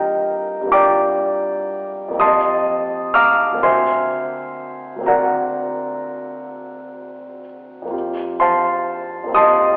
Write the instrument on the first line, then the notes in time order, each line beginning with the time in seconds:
grand piano
Already playing: G2 G3 A#3 F4 G4 A#4 D#5 G5 A#5
0.61 G2 G3
0.66 A#3 F4
0.72 G4 D5 G5 A#5 D6
2.08 F2 A#3
2.14 C4 F4
2.19 G4 D#5 A5 C6 D#6
3.14 F5 A#5 D6 F6
3.52 D2 A#3
3.57 C4 F#4
3.62 A#4 C5 E5 G#5 C6
4.96 D2 A#3
5.01 C4 F#4
5.06 A#4 D5 F#5 A#5
7.82 F2 A#3
7.88 C4 F4
7.93 G4
8.40 C5 F5 A5 C6
9.24 F2 A#3
9.29 C4 F4
9.35 G4 D#5 A5 C6 D#6